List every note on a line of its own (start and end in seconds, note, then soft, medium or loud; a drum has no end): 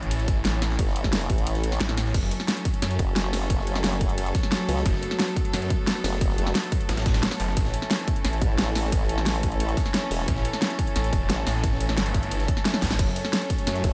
0.00 0.77 A1 medium
0.00 2.10 E3 medium
0.00 2.10 A3 medium
0.00 2.10 C#4 medium
0.00 3.43 E4 medium
0.00 2.10 A4 medium
0.00 2.14 C#5 medium
0.00 2.14 A5 medium
0.00 closed hi-hat soft
0.11 closed hi-hat loud
0.11 ride medium
0.20 closed hi-hat soft
0.28 kick loud
0.28 closed hi-hat medium
0.28 ride medium
0.45 snare loud
0.45 closed hi-hat loud
0.45 ride medium
0.62 snare soft
0.62 snare medium
0.62 closed hi-hat medium
0.62 ride medium
0.70 snare medium
0.79 1.28 G1 loud
0.79 kick loud
0.79 closed hi-hat loud
0.79 ride medium
0.87 snare soft
0.96 closed hi-hat medium
0.96 ride medium
1.04 kick medium
1.04 snare medium
1.13 snare loud
1.13 closed hi-hat loud
1.13 open hi-hat medium
1.21 snare soft
1.21 closed hi-hat soft
1.30 1.79 A1 loud
1.30 kick loud
1.30 closed hi-hat medium
1.30 ride medium
1.38 closed hi-hat soft
1.47 closed hi-hat loud
1.47 ride medium
1.55 snare soft
1.55 closed hi-hat soft
1.64 closed hi-hat medium
1.64 ride medium
1.72 snare soft
1.72 ride medium
1.81 2.13 A1 medium
1.81 snare loud
1.81 snare medium
1.81 closed hi-hat loud
1.89 snare soft
1.89 snare medium
1.89 ride medium
1.97 snare medium
1.97 closed hi-hat medium
1.97 ride medium
2.06 snare medium
2.14 2.30 F#1 medium
2.14 7.53 F#3 medium
2.14 12.95 A3 medium
2.14 4.83 C#4 medium
2.14 8.13 F#4 medium
2.14 7.53 A4 medium
2.14 kick loud
2.14 closed hi-hat loud
2.14 crash loud
2.14 ride medium
2.23 snare medium
2.28 13.93 A5 medium
2.28 closed hi-hat medium
2.28 ride medium
2.40 snare soft
2.48 snare loud
2.48 closed hi-hat loud
2.48 ride medium
2.57 13.93 C#5 medium
2.57 snare soft
2.57 closed hi-hat soft
2.65 kick loud
2.65 closed hi-hat medium
2.65 ride medium
2.74 closed hi-hat soft
2.82 2.98 F#2 loud
2.82 snare medium
2.82 closed hi-hat loud
2.82 ride medium
2.91 closed hi-hat soft
2.99 4.33 F#1 loud
2.99 kick loud
2.99 closed hi-hat medium
2.99 ride medium
3.16 snare loud
3.16 closed hi-hat loud
3.16 ride medium
3.33 snare soft
3.33 snare medium
3.33 open hi-hat medium
3.33 ride medium
3.42 snare medium
3.50 kick loud
3.50 closed hi-hat medium
3.50 ride medium
3.59 snare soft
3.67 closed hi-hat medium
3.67 ride medium
3.75 snare soft
3.84 snare loud
3.84 closed hi-hat loud
3.84 open hi-hat medium
3.92 snare soft
3.92 closed hi-hat soft
4.01 kick loud
4.01 closed hi-hat medium
4.01 ride medium
4.09 closed hi-hat soft
4.18 closed hi-hat medium
4.18 ride medium
4.26 closed hi-hat soft
4.35 kick loud
4.35 snare medium
4.35 closed hi-hat medium
4.35 ride medium
4.43 snare soft
4.52 snare loud
4.52 closed hi-hat medium
4.52 ride medium
4.69 4.84 C#2 loud
4.69 open hi-hat medium
4.69 ride medium
4.77 snare medium
4.86 5.01 F#1 medium
4.86 7.54 B3 medium
4.86 kick loud
4.86 closed hi-hat loud
4.86 ride medium
4.94 snare medium
5.03 closed hi-hat medium
5.03 ride medium
5.11 snare medium
5.20 snare loud
5.20 closed hi-hat loud
5.20 ride medium
5.28 snare soft
5.28 closed hi-hat soft
5.36 kick loud
5.36 closed hi-hat medium
5.36 ride medium
5.45 closed hi-hat soft
5.53 5.69 F#2 medium
5.53 snare medium
5.53 closed hi-hat medium
5.53 ride medium
5.62 closed hi-hat soft
5.70 kick loud
5.70 closed hi-hat medium
5.70 ride medium
5.87 snare loud
5.87 closed hi-hat medium
5.87 ride medium
6.04 6.37 F#1 loud
6.04 snare soft
6.04 snare medium
6.04 open hi-hat medium
6.04 ride medium
6.13 snare medium
6.21 kick loud
6.21 closed hi-hat medium
6.21 ride medium
6.30 snare soft
6.38 6.54 F#1 loud
6.38 closed hi-hat medium
6.38 ride medium
6.47 snare soft
6.55 snare loud
6.55 closed hi-hat medium
6.55 open hi-hat medium
6.63 snare soft
6.63 closed hi-hat soft
6.72 kick loud
6.72 closed hi-hat medium
6.72 ride medium
6.81 closed hi-hat soft
6.89 7.22 A1 loud
6.89 snare loud
6.89 closed hi-hat medium
6.89 ride medium
6.97 snare loud
6.97 closed hi-hat soft
6.97 ride medium
7.06 kick loud
7.06 snare loud
7.06 closed hi-hat medium
7.06 ride medium
7.14 snare loud
7.14 snare soft
7.14 ride medium
7.23 snare loud
7.23 closed hi-hat medium
7.23 ride medium
7.31 snare loud
7.31 snare medium
7.31 ride medium
7.40 7.55 F#1 loud
7.40 open hi-hat medium
7.40 ride medium
7.48 snare medium
7.57 7.72 A1 loud
7.57 12.95 E3 medium
7.57 12.95 C#4 medium
7.57 13.88 E4 medium
7.57 13.93 A4 medium
7.57 kick loud
7.57 closed hi-hat medium
7.57 ride medium
7.65 snare medium
7.74 closed hi-hat medium
7.74 ride medium
7.82 snare soft
7.91 snare loud
7.91 closed hi-hat medium
7.91 ride medium
7.99 snare soft
7.99 closed hi-hat soft
8.08 kick loud
8.08 closed hi-hat medium
8.08 ride medium
8.16 closed hi-hat soft
8.25 8.40 A1 loud
8.25 snare medium
8.25 closed hi-hat medium
8.25 ride medium
8.33 closed hi-hat soft
8.42 9.76 A1 loud
8.42 kick loud
8.42 closed hi-hat medium
8.42 ride medium
8.58 snare loud
8.58 closed hi-hat medium
8.58 ride medium
8.75 snare soft
8.75 snare medium
8.75 open hi-hat medium
8.75 ride medium
8.84 snare medium
8.92 kick loud
8.92 closed hi-hat loud
8.92 ride medium
9.01 snare soft
9.09 closed hi-hat medium
9.09 ride medium
9.18 snare soft
9.26 snare loud
9.26 closed hi-hat loud
9.26 open hi-hat medium
9.35 snare soft
9.35 closed hi-hat soft
9.43 kick loud
9.43 closed hi-hat medium
9.43 ride medium
9.52 closed hi-hat soft
9.60 closed hi-hat medium
9.60 ride medium
9.69 closed hi-hat soft
9.77 kick loud
9.77 snare medium
9.77 closed hi-hat medium
9.77 ride medium
9.86 snare soft
9.94 snare loud
9.94 closed hi-hat medium
9.94 ride medium
10.11 10.27 E1 medium
10.11 open hi-hat medium
10.11 ride medium
10.20 snare medium
10.28 10.44 A1 loud
10.28 kick loud
10.28 closed hi-hat medium
10.28 ride medium
10.36 snare medium
10.45 closed hi-hat medium
10.45 ride medium
10.53 snare soft
10.62 snare loud
10.62 closed hi-hat loud
10.62 ride medium
10.70 snare soft
10.70 closed hi-hat soft
10.79 kick loud
10.79 closed hi-hat medium
10.79 ride medium
10.87 closed hi-hat soft
10.96 11.11 A1 loud
10.96 snare medium
10.96 closed hi-hat loud
10.96 ride loud
11.04 closed hi-hat soft
11.13 11.28 E1 loud
11.13 kick loud
11.13 closed hi-hat medium
11.13 ride medium
11.30 11.45 A1 loud
11.30 snare loud
11.30 closed hi-hat loud
11.30 ride medium
11.47 11.96 A1 loud
11.47 snare soft
11.47 snare medium
11.47 open hi-hat medium
11.47 ride medium
11.55 snare medium
11.64 kick loud
11.64 closed hi-hat loud
11.64 ride medium
11.72 snare soft
11.80 closed hi-hat medium
11.80 ride medium
11.89 snare soft
11.89 snare medium
11.97 12.47 G1 loud
11.97 snare loud
11.97 closed hi-hat loud
11.97 ride medium
12.06 closed hi-hat soft
12.06 ride medium
12.14 kick loud
12.14 snare soft
12.14 closed hi-hat medium
12.23 closed hi-hat soft
12.23 ride medium
12.31 closed hi-hat loud
12.31 ride medium
12.40 snare soft
12.40 closed hi-hat soft
12.48 kick loud
12.48 closed hi-hat medium
12.48 ride medium
12.57 snare soft
12.65 snare loud
12.65 closed hi-hat loud
12.65 ride medium
12.74 snare soft
12.74 snare medium
12.74 high tom medium
12.82 12.98 A1 loud
12.82 kick medium
12.82 snare loud
12.82 snare medium
12.82 open hi-hat medium
12.82 ride medium
12.91 snare loud
12.91 snare medium
12.91 ride medium
12.99 13.15 F#1 loud
12.99 13.93 F#3 medium
12.99 13.93 A3 medium
12.99 13.93 C#4 medium
12.99 13.93 F#4 medium
12.99 kick loud
12.99 closed hi-hat loud
12.99 crash medium
12.99 ride medium
13.08 snare medium
13.16 closed hi-hat medium
13.16 ride medium
13.25 snare medium
13.33 snare loud
13.33 closed hi-hat loud
13.33 ride medium
13.42 snare soft
13.42 closed hi-hat soft
13.50 kick loud
13.50 closed hi-hat medium
13.50 ride medium
13.58 closed hi-hat soft
13.67 13.83 F#2 medium
13.67 snare medium
13.67 closed hi-hat loud
13.67 ride medium
13.75 closed hi-hat soft
13.84 13.93 F#1 loud
13.84 kick loud
13.84 closed hi-hat medium
13.84 ride medium